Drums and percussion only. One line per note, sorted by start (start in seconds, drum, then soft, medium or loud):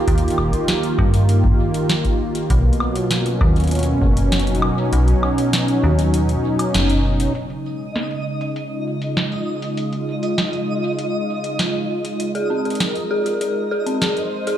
0.08 kick medium
0.08 closed hi-hat medium
0.18 closed hi-hat soft
0.28 closed hi-hat soft
0.30 closed hi-hat soft
0.38 kick soft
0.38 high woodblock soft
0.40 kick medium
0.43 kick medium
0.46 kick medium
0.48 kick medium
0.51 kick medium
0.51 closed hi-hat soft
0.68 snare loud
0.68 closed hi-hat medium
0.83 closed hi-hat soft
0.99 kick loud
0.99 high woodblock soft
1.14 closed hi-hat soft
1.29 closed hi-hat medium
1.44 kick loud
1.74 closed hi-hat soft
1.89 snare loud
1.89 closed hi-hat medium
2.05 kick medium
2.05 closed hi-hat soft
2.35 closed hi-hat soft
2.50 kick medium
2.50 closed hi-hat medium
2.73 closed hi-hat soft
2.80 high woodblock medium
2.96 closed hi-hat soft
3.11 snare loud
3.11 closed hi-hat medium
3.26 closed hi-hat soft
3.41 kick loud
3.41 high woodblock soft
3.56 closed hi-hat soft
3.60 closed hi-hat soft
3.64 closed hi-hat soft
3.67 closed hi-hat soft
3.71 closed hi-hat medium
3.75 closed hi-hat soft
3.79 closed hi-hat soft
3.83 closed hi-hat soft
4.02 kick medium
4.17 closed hi-hat soft
4.32 snare loud
4.32 closed hi-hat medium
4.40 closed hi-hat soft
4.47 closed hi-hat soft
4.55 closed hi-hat soft
4.62 high woodblock medium
4.93 closed hi-hat medium
5.08 closed hi-hat soft
5.23 high woodblock medium
5.38 closed hi-hat soft
5.53 snare loud
5.53 closed hi-hat medium
5.68 closed hi-hat soft
5.99 closed hi-hat soft
6.14 closed hi-hat medium
6.29 closed hi-hat soft
6.59 closed hi-hat medium
6.59 high woodblock soft
6.74 snare loud
6.74 closed hi-hat medium
6.90 closed hi-hat soft
7.20 closed hi-hat medium
7.35 closed hi-hat medium
7.50 closed hi-hat soft
7.96 snare loud
7.96 closed hi-hat medium
8.11 closed hi-hat soft
8.41 closed hi-hat soft
8.56 closed hi-hat medium
9.02 closed hi-hat soft
9.17 snare loud
9.17 closed hi-hat medium
9.32 closed hi-hat soft
9.62 closed hi-hat soft
9.77 closed hi-hat medium
9.93 closed hi-hat soft
10.23 closed hi-hat soft
10.38 snare loud
10.38 closed hi-hat medium
10.53 closed hi-hat soft
10.99 closed hi-hat medium
11.44 closed hi-hat soft
11.59 snare loud
11.59 closed hi-hat medium
12.05 closed hi-hat medium
12.20 closed hi-hat medium
12.35 closed hi-hat soft
12.65 closed hi-hat soft
12.70 closed hi-hat soft
12.75 closed hi-hat soft
12.80 snare loud
12.80 closed hi-hat medium
12.96 closed hi-hat soft
13.26 closed hi-hat soft
13.41 closed hi-hat medium
13.87 closed hi-hat soft
14.02 snare loud
14.02 closed hi-hat medium
14.17 closed hi-hat soft
14.47 closed hi-hat soft